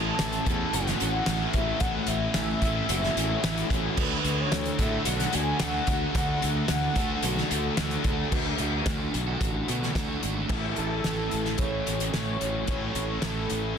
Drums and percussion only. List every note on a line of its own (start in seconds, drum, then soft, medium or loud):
0.19 snare loud
0.19 closed hi-hat loud
0.32 closed hi-hat soft
0.46 kick medium
0.46 closed hi-hat medium
0.73 closed hi-hat loud
0.87 snare soft
0.87 closed hi-hat soft
1.00 closed hi-hat medium
1.26 snare loud
1.26 closed hi-hat loud
1.53 kick medium
1.53 closed hi-hat medium
1.80 kick loud
1.80 closed hi-hat loud
2.07 closed hi-hat medium
2.34 snare loud
2.34 closed hi-hat loud
2.62 kick medium
2.62 closed hi-hat medium
2.89 closed hi-hat loud
3.03 snare soft
3.17 closed hi-hat medium
3.44 snare loud
3.44 closed hi-hat loud
3.57 closed hi-hat medium
3.70 kick medium
3.70 closed hi-hat medium
3.97 kick loud
3.97 crash loud
4.25 closed hi-hat medium
4.52 snare loud
4.52 closed hi-hat loud
4.65 closed hi-hat medium
4.79 kick medium
4.79 closed hi-hat medium
5.05 closed hi-hat loud
5.20 snare soft
5.20 closed hi-hat soft
5.33 closed hi-hat medium
5.60 snare loud
5.60 closed hi-hat loud
5.87 kick medium
5.87 closed hi-hat medium
6.15 kick loud
6.15 closed hi-hat loud
6.42 closed hi-hat medium
6.68 snare loud
6.68 closed hi-hat loud
6.96 kick medium
6.96 closed hi-hat medium
7.23 closed hi-hat loud
7.37 snare soft
7.51 closed hi-hat medium
7.77 snare loud
7.77 closed hi-hat medium
7.91 closed hi-hat soft
8.04 kick medium
8.04 closed hi-hat medium
8.32 kick loud
8.32 crash loud
8.58 closed hi-hat medium
8.86 kick loud
8.86 snare loud
8.86 closed hi-hat loud
9.14 closed hi-hat medium
9.41 kick loud
9.41 closed hi-hat medium
9.68 closed hi-hat medium
9.82 snare soft
9.95 kick loud
9.95 snare loud
9.95 closed hi-hat medium
10.23 closed hi-hat medium
10.49 kick loud
10.49 crash medium
10.76 closed hi-hat medium
11.04 snare medium
11.04 closed hi-hat medium
11.31 closed hi-hat medium
11.45 snare soft
11.58 kick loud
11.58 closed hi-hat medium
11.87 closed hi-hat medium
12.00 closed hi-hat medium
12.14 snare loud
12.14 closed hi-hat medium
12.41 closed hi-hat medium
12.67 kick loud
12.67 closed hi-hat medium
12.95 closed hi-hat medium
13.22 snare loud
13.22 closed hi-hat medium
13.50 closed hi-hat medium